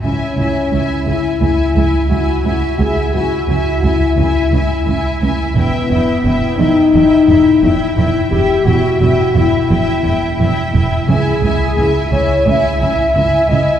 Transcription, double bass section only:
0.04 0.12 C#2 soft
0.38 0.46 C#2 soft
0.72 0.80 C#2 soft
1.06 1.14 C#2 soft
1.41 1.49 C#2 soft
1.76 1.84 C#2 soft
2.10 2.18 C#2 soft
2.44 2.52 C#2 soft
2.79 2.87 C#2 medium
3.14 3.22 C#2 soft
3.48 3.56 C#2 soft
3.83 3.91 C#2 soft
4.18 4.26 C#2 medium
4.52 4.60 C#2 medium
4.87 4.95 C#2 soft
5.22 5.30 C#2 medium
5.56 5.64 E1 medium
5.91 5.99 E1 soft
6.25 6.33 E1 medium
6.60 6.68 E1 medium
6.94 7.02 E1 medium
7.29 7.37 E1 medium
7.63 7.71 E1 medium
7.98 8.06 E1 soft
8.32 8.40 E1 medium
8.67 8.75 E1 medium
9.02 9.10 E1 medium
9.37 9.45 E1 medium
9.71 9.79 E1 medium
10.05 10.13 E1 medium
10.40 10.48 E1 medium
10.74 10.82 E1 soft
11.09 11.17 C#2 medium
11.43 11.51 C#2 medium
11.78 11.86 C#2 medium
12.12 12.20 C#2 soft
12.46 12.54 C#2 medium
12.81 12.89 C#2 medium
13.16 13.24 C#2 medium
13.50 13.58 C#2 medium

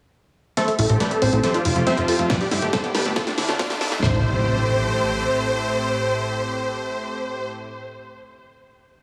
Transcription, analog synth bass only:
0.79 0.86 A1 loud
0.90 0.97 A1 medium
1.22 1.29 A1 medium
1.33 1.40 A1 medium
1.65 1.72 F1 loud
1.76 1.83 F1 medium
1.97 2.05 F1 medium
2.19 2.26 F2 medium
2.51 2.59 G1 loud
2.62 2.69 G1 medium
2.95 3.02 G1 medium
3.05 3.13 G1 medium
3.38 3.45 D2 loud
3.49 3.56 D2 medium
3.70 3.77 D2 medium
3.92 3.99 D1 medium
4.02 5.28 A1 loud

